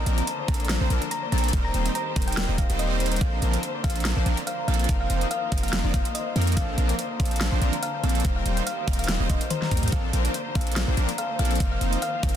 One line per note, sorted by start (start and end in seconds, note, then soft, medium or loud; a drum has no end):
0.00 1.52 D3 medium
0.00 4.85 A#3 medium
0.00 0.33 A#4 medium
0.00 6.53 C5 medium
0.00 0.38 D5 loud
0.00 1.42 F5 loud
0.06 0.22 A#1 loud
0.06 0.24 F3 medium
0.06 0.24 A#3 medium
0.06 0.24 C4 medium
0.06 0.24 D4 medium
0.06 0.24 A#4 medium
0.06 0.69 C5 medium
0.06 closed hi-hat medium
0.18 0.33 A#5 medium
0.18 closed hi-hat medium
0.27 0.54 A4 loud
0.27 closed hi-hat medium
0.39 0.59 D5 loud
0.48 0.78 A#1 loud
0.48 0.78 F3 medium
0.48 0.78 A#3 medium
0.48 0.78 C4 medium
0.48 0.78 D4 medium
0.48 0.78 A4 loud
0.48 0.96 A#4 medium
0.48 0.68 A#5 loud
0.48 kick loud
0.48 closed hi-hat soft
0.54 closed hi-hat medium
0.60 1.01 D5 loud
0.60 closed hi-hat soft
0.65 closed hi-hat medium
0.69 1.32 C5 medium
0.69 snare loud
0.69 closed hi-hat medium
0.81 0.88 A#1 medium
0.81 0.88 F3 loud
0.81 0.88 A#3 loud
0.81 0.88 C4 medium
0.81 0.88 D4 loud
0.81 0.88 C5 loud
0.81 0.96 A#5 medium
0.90 0.99 A#1 loud
0.90 1.02 F3 loud
0.90 1.02 A#3 medium
0.90 1.02 C4 medium
0.90 1.02 D4 medium
0.90 1.17 A4 loud
0.90 1.02 A#4 loud
0.90 closed hi-hat medium
1.02 1.22 D5 loud
1.02 closed hi-hat medium
1.11 1.74 A#4 medium
1.11 1.25 A#5 medium
1.11 closed hi-hat medium
1.23 1.71 D5 loud
1.32 1.51 A#1 medium
1.32 1.51 F3 loud
1.32 1.51 A#3 medium
1.32 1.51 C4 medium
1.32 1.51 D4 medium
1.32 1.51 A4 loud
1.32 1.95 C5 medium
1.32 1.52 A#5 loud
1.32 closed hi-hat soft
1.38 closed hi-hat medium
1.44 2.84 A#5 medium
1.44 closed hi-hat soft
1.48 closed hi-hat medium
1.53 1.72 D#1 loud
1.53 3.19 D#3 medium
1.53 1.72 G3 medium
1.53 1.72 A#3 medium
1.53 1.72 C4 medium
1.53 1.72 D#4 medium
1.53 2.16 G4 loud
1.53 3.19 G4 medium
1.53 1.72 A#4 medium
1.53 kick loud
1.53 closed hi-hat medium
1.65 1.85 D#5 loud
1.65 1.84 A#5 loud
1.74 1.89 D#1 loud
1.74 1.91 G3 medium
1.74 1.91 A#3 medium
1.74 1.91 C4 medium
1.74 1.91 D#4 medium
1.74 2.37 A#4 medium
1.74 1.91 C5 medium
1.74 closed hi-hat medium
1.86 2.27 D#5 loud
1.86 closed hi-hat medium
1.95 2.79 C5 medium
1.95 2.15 A#5 loud
1.95 closed hi-hat medium
2.07 3.37 C6 medium
2.16 2.46 D#1 loud
2.16 2.46 G3 medium
2.16 2.46 A#3 medium
2.16 2.46 C4 medium
2.16 2.46 D#4 medium
2.16 4.52 G4 loud
2.16 2.46 A#4 loud
2.16 kick loud
2.16 closed hi-hat soft
2.22 closed hi-hat medium
2.27 2.48 D#5 loud
2.27 2.47 G5 loud
2.27 closed hi-hat soft
2.32 closed hi-hat medium
2.37 2.90 A#4 medium
2.37 snare loud
2.37 closed hi-hat medium
2.49 2.67 D#1 medium
2.49 2.56 G3 loud
2.49 2.56 A#3 loud
2.49 2.56 C4 medium
2.49 2.56 D#4 loud
2.49 2.58 D#5 loud
2.49 2.56 D#5 loud
2.58 3.00 D#5 medium
2.58 2.72 F5 medium
2.58 kick loud
2.58 closed hi-hat medium
2.69 3.19 D#1 medium
2.69 3.19 G3 loud
2.69 3.19 A#3 medium
2.69 3.19 C4 medium
2.69 3.19 D#4 medium
2.69 3.19 C5 loud
2.69 4.25 G5 medium
2.69 closed hi-hat medium
2.79 3.11 C5 medium
2.79 3.05 D#5 medium
2.79 closed hi-hat medium
2.91 3.48 A#4 medium
3.00 3.81 D#5 medium
3.00 closed hi-hat soft
3.06 closed hi-hat medium
3.12 3.21 C5 loud
3.12 closed hi-hat soft
3.16 closed hi-hat medium
3.21 3.40 A#1 loud
3.21 4.87 D3 medium
3.21 3.53 C5 medium
3.21 3.41 F5 medium
3.21 kick loud
3.21 closed hi-hat medium
3.33 3.48 A#5 medium
3.42 3.57 A#1 loud
3.42 3.59 F3 medium
3.42 3.59 A#3 medium
3.42 3.59 C4 medium
3.42 3.59 D4 medium
3.42 3.69 A4 loud
3.42 3.59 A#4 medium
3.42 closed hi-hat medium
3.53 3.84 C5 medium
3.53 closed hi-hat medium
3.63 4.11 A#4 medium
3.63 closed hi-hat medium
3.75 4.37 D5 loud
3.84 4.14 A#1 loud
3.84 4.14 F3 medium
3.84 4.14 A#3 medium
3.84 4.14 C4 medium
3.84 4.14 D4 medium
3.84 4.14 A4 loud
3.84 4.16 C5 medium
3.84 4.03 F5 loud
3.84 kick loud
3.84 closed hi-hat soft
3.90 closed hi-hat medium
3.96 4.11 A#5 medium
3.96 closed hi-hat soft
4.00 closed hi-hat medium
4.05 4.32 A4 loud
4.05 snare loud
4.05 closed hi-hat medium
4.16 4.24 A#1 medium
4.16 4.24 F3 loud
4.16 4.24 A#3 medium
4.16 4.24 C4 medium
4.16 4.24 D4 loud
4.16 4.24 C5 loud
4.16 4.47 C5 medium
4.26 4.35 A#1 loud
4.26 4.37 F3 loud
4.26 4.38 A#3 medium
4.26 4.38 C4 medium
4.26 4.38 D4 medium
4.26 4.38 A#4 loud
4.26 4.74 A#4 medium
4.26 closed hi-hat medium
4.37 5.16 D5 loud
4.37 closed hi-hat medium
4.47 4.79 C5 medium
4.47 4.61 F5 medium
4.47 closed hi-hat medium
4.59 4.74 A#5 medium
4.68 4.87 A#1 loud
4.68 4.87 F3 loud
4.68 4.87 A#3 medium
4.68 4.87 C4 medium
4.68 4.87 D4 medium
4.68 5.37 A4 loud
4.68 4.87 A4 loud
4.68 4.87 F5 loud
4.68 closed hi-hat soft
4.74 closed hi-hat medium
4.79 4.89 C5 medium
4.79 closed hi-hat soft
4.84 closed hi-hat medium
4.89 5.08 F1 loud
4.89 6.55 D#3 medium
4.89 5.08 F3 medium
4.89 8.21 A#3 medium
4.89 5.08 A#3 medium
4.89 5.08 C4 medium
4.89 5.08 D#4 medium
4.89 6.55 F4 medium
4.89 5.08 A#4 medium
4.89 5.52 C5 medium
4.89 kick loud
4.89 closed hi-hat medium
5.00 5.20 F5 loud
5.00 5.63 F5 medium
5.10 5.25 F1 loud
5.10 5.27 F3 medium
5.10 5.27 A#3 medium
5.10 5.27 C4 medium
5.10 5.27 D#4 medium
5.10 5.27 C5 medium
5.10 5.42 D#5 medium
5.10 closed hi-hat medium
5.21 5.84 D#6 medium
5.21 closed hi-hat medium
5.31 5.94 A#4 loud
5.31 5.50 F5 loud
5.31 closed hi-hat medium
5.43 5.73 D#5 medium
5.52 5.82 F1 loud
5.52 5.82 F3 medium
5.52 5.82 A#3 medium
5.52 5.82 C4 medium
5.52 5.82 D#4 medium
5.52 5.82 A#4 loud
5.52 6.15 C5 medium
5.52 kick loud
5.52 closed hi-hat medium
5.58 closed hi-hat medium
5.63 5.82 F5 medium
5.63 6.26 F5 loud
5.63 closed hi-hat medium
5.68 closed hi-hat medium
5.73 6.05 D#5 medium
5.73 snare loud
5.73 closed hi-hat medium
5.84 5.92 F1 loud
5.84 5.92 F3 loud
5.84 5.92 A#3 loud
5.84 5.92 C4 loud
5.84 5.92 D#4 loud
5.84 5.92 D5 loud
5.84 6.47 D#6 medium
5.94 6.03 F1 loud
5.94 6.05 F3 loud
5.94 6.05 A#3 medium
5.94 6.05 C4 medium
5.94 6.05 D#4 medium
5.94 6.63 A#4 loud
5.94 6.05 C5 loud
5.94 6.07 F5 medium
5.94 kick loud
5.94 closed hi-hat medium
6.05 6.36 D#5 medium
6.05 closed hi-hat medium
6.15 6.68 C5 medium
6.15 6.41 D#5 medium
6.15 closed hi-hat medium
6.26 7.93 F5 loud
6.36 6.58 F2 loud
6.36 6.55 F3 loud
6.36 6.55 A#3 medium
6.36 6.55 C4 medium
6.36 6.54 D#4 medium
6.36 6.54 A#4 loud
6.36 6.95 D#5 medium
6.36 closed hi-hat soft
6.42 closed hi-hat medium
6.47 6.95 D#6 medium
6.47 closed hi-hat soft
6.52 closed hi-hat medium
6.57 6.76 A#1 loud
6.57 8.23 D3 medium
6.57 6.75 F3 medium
6.57 6.75 A#3 medium
6.57 6.75 C4 medium
6.57 6.75 D4 medium
6.57 6.75 A4 medium
6.57 6.84 A4 loud
6.57 12.36 C5 medium
6.57 6.76 F5 medium
6.57 kick loud
6.57 closed hi-hat medium
6.68 6.98 C5 medium
6.78 6.93 A#1 loud
6.78 6.95 F3 medium
6.78 6.95 A#3 medium
6.78 6.95 C4 medium
6.78 6.95 D4 medium
6.78 6.95 A#4 medium
6.78 7.26 A#4 medium
6.78 closed hi-hat medium
6.89 7.52 D5 loud
6.89 closed hi-hat medium
6.99 7.31 C5 medium
6.99 closed hi-hat medium
7.10 7.26 A#5 medium
7.20 7.50 A#1 loud
7.20 7.49 F3 medium
7.20 7.49 A#3 medium
7.20 7.49 C4 medium
7.20 7.49 D4 medium
7.20 7.49 A4 loud
7.20 7.47 A4 loud
7.20 7.39 F5 medium
7.20 kick loud
7.20 closed hi-hat medium
7.25 closed hi-hat medium
7.31 7.61 C5 medium
7.31 closed hi-hat medium
7.36 closed hi-hat medium
7.41 7.89 A#4 medium
7.41 snare loud
7.41 closed hi-hat medium
7.52 7.60 A#1 medium
7.52 7.59 F3 loud
7.52 7.59 A#3 medium
7.52 7.59 C4 loud
7.52 7.59 D4 loud
7.52 7.59 C5 loud
7.52 8.15 D5 loud
7.61 7.71 A#1 loud
7.61 7.73 F3 medium
7.61 7.73 A#3 medium
7.61 7.73 C4 medium
7.61 7.73 D4 medium
7.61 7.73 A#4 loud
7.61 7.94 C5 medium
7.61 closed hi-hat medium
7.73 7.89 A#5 medium
7.73 closed hi-hat medium
7.83 8.10 A4 loud
7.83 7.96 F5 medium
7.83 closed hi-hat medium
7.94 8.24 C5 medium
8.03 8.23 A#1 loud
8.03 8.22 F3 loud
8.03 8.22 A#3 medium
8.03 8.22 C4 medium
8.03 8.22 D4 medium
8.03 8.22 A4 loud
8.03 8.23 F5 loud
8.03 closed hi-hat medium
8.09 closed hi-hat medium
8.15 8.84 D5 loud
8.15 closed hi-hat medium
8.20 closed hi-hat medium
8.25 8.44 D#1 loud
8.25 9.91 D#3 medium
8.25 12.36 A#3 medium
8.25 9.91 G4 medium
8.25 8.57 C5 medium
8.25 kick loud
8.25 closed hi-hat medium
8.36 8.55 F5 loud
8.36 8.99 C6 medium
8.45 8.61 D#1 loud
8.45 8.63 G3 medium
8.45 8.63 A#3 medium
8.45 8.63 C4 medium
8.45 8.63 D#4 medium
8.45 9.08 G4 loud
8.45 8.63 C5 medium
8.45 closed hi-hat medium
8.57 8.87 C5 medium
8.57 closed hi-hat medium
8.66 9.82 A#4 medium
8.66 8.86 F5 loud
8.66 closed hi-hat medium
8.78 9.40 D#5 loud
8.88 9.18 D#1 loud
8.88 9.17 G3 medium
8.88 9.17 A#3 medium
8.88 9.17 C4 medium
8.88 9.17 D#4 medium
8.88 9.17 A#4 loud
8.88 kick loud
8.88 closed hi-hat medium
8.93 closed hi-hat medium
8.99 9.18 F5 medium
8.99 10.30 C6 medium
8.99 closed hi-hat medium
9.04 closed hi-hat medium
9.09 9.29 G4 loud
9.09 snare loud
9.09 closed hi-hat medium
9.20 9.28 D#1 loud
9.20 9.27 G3 loud
9.20 9.27 A#3 loud
9.20 9.27 C4 medium
9.20 9.27 D#4 medium
9.20 9.71 C5 medium
9.20 9.27 D#5 loud
9.29 9.39 D#1 loud
9.29 9.41 G3 medium
9.29 9.41 A#3 medium
9.29 9.41 C4 medium
9.29 11.65 G4 loud
9.29 9.41 C5 loud
9.29 9.43 D#5 medium
9.29 kick loud
9.29 closed hi-hat medium
9.41 10.31 D#5 medium
9.41 closed hi-hat medium
9.50 9.77 C5 medium
9.50 9.62 A#5 medium
9.50 closed hi-hat medium
9.50 high tom medium
9.62 9.98 A#5 loud
9.62 snare soft
9.62 high tom medium
9.71 9.91 D#2 loud
9.71 9.90 G3 loud
9.71 9.90 A#3 medium
9.71 9.90 C4 medium
9.71 9.90 D#4 medium
9.71 9.90 A#4 loud
9.71 kick medium
9.71 closed hi-hat medium
9.77 closed hi-hat medium
9.83 9.98 A#4 medium
9.83 closed hi-hat medium
9.83 mid tom medium
9.88 closed hi-hat medium
9.92 10.11 A#1 loud
9.92 11.59 D3 medium
9.92 10.11 F3 medium
9.92 10.11 A#3 medium
9.92 10.11 C4 medium
9.92 10.11 D4 medium
9.92 10.11 A4 medium
9.92 10.19 A4 loud
9.92 10.12 F5 loud
9.92 kick loud
9.92 closed hi-hat medium
10.04 10.34 C5 medium
10.13 10.29 A#1 loud
10.13 10.31 F3 medium
10.13 10.31 A#3 medium
10.13 10.31 C4 medium
10.13 10.31 D4 medium
10.13 10.61 A#4 medium
10.13 10.31 A#4 medium
10.13 closed hi-hat medium
10.25 10.88 D5 loud
10.25 closed hi-hat medium
10.34 10.66 C5 medium
10.34 closed hi-hat medium
10.46 10.61 A#5 medium
10.55 10.85 A#1 loud
10.55 10.85 F3 medium
10.55 10.85 A#3 medium
10.55 10.85 C4 medium
10.55 10.85 D4 medium
10.55 10.83 A4 loud
10.55 10.85 A4 loud
10.55 10.75 F5 medium
10.55 kick loud
10.55 closed hi-hat medium
10.61 closed hi-hat medium
10.67 10.97 C5 medium
10.67 closed hi-hat medium
10.72 closed hi-hat medium
10.76 11.24 A#4 medium
10.76 snare loud
10.76 closed hi-hat medium
10.88 10.95 A#1 loud
10.88 10.95 F3 loud
10.88 10.95 A#3 loud
10.88 10.95 C4 loud
10.88 10.95 D4 loud
10.88 10.95 C5 loud
10.88 11.50 D5 loud
10.97 11.06 A#1 loud
10.97 11.09 F3 medium
10.97 11.09 A#3 medium
10.97 11.09 C4 medium
10.97 11.09 D4 medium
10.97 11.09 A#4 loud
10.97 11.29 C5 medium
10.97 closed hi-hat medium
11.09 11.24 A#5 medium
11.09 closed hi-hat medium
11.18 11.45 A4 loud
11.18 11.32 F5 medium
11.18 closed hi-hat medium
11.30 12.02 C5 medium
11.39 11.58 A#1 loud
11.39 11.58 F3 loud
11.39 11.58 A#3 loud
11.39 11.58 C4 medium
11.39 11.58 D4 medium
11.39 11.58 A4 loud
11.39 11.81 A#4 medium
11.39 11.59 F5 loud
11.39 closed hi-hat medium
11.45 closed hi-hat medium
11.51 11.66 D5 loud
11.51 closed hi-hat medium
11.55 closed hi-hat medium
11.60 11.79 F1 loud
11.60 12.36 D#3 medium
11.60 11.79 F3 medium
11.60 11.79 A#3 medium
11.60 11.79 C4 medium
11.60 11.79 D#4 medium
11.60 12.36 F4 medium
11.60 11.79 A#4 medium
11.60 11.92 D#5 medium
11.60 kick loud
11.60 closed hi-hat medium
11.72 11.91 F5 medium
11.72 12.34 D#6 medium
11.81 11.96 F1 loud
11.81 11.98 F3 medium
11.81 11.98 A#3 medium
11.81 11.98 C4 medium
11.81 11.98 D#4 medium
11.81 12.36 A#4 loud
11.81 11.98 C5 medium
11.81 closed hi-hat medium
11.93 12.23 D#5 medium
11.93 closed hi-hat medium
12.02 12.36 C5 medium
12.02 12.22 F5 loud
12.02 closed hi-hat medium
12.14 12.36 F5 loud
12.23 12.36 F1 loud
12.23 12.36 F3 medium
12.23 12.36 A#3 medium
12.23 12.36 C4 medium
12.23 12.36 D#4 medium
12.23 12.36 A#4 loud
12.23 kick loud
12.23 closed hi-hat soft
12.29 closed hi-hat medium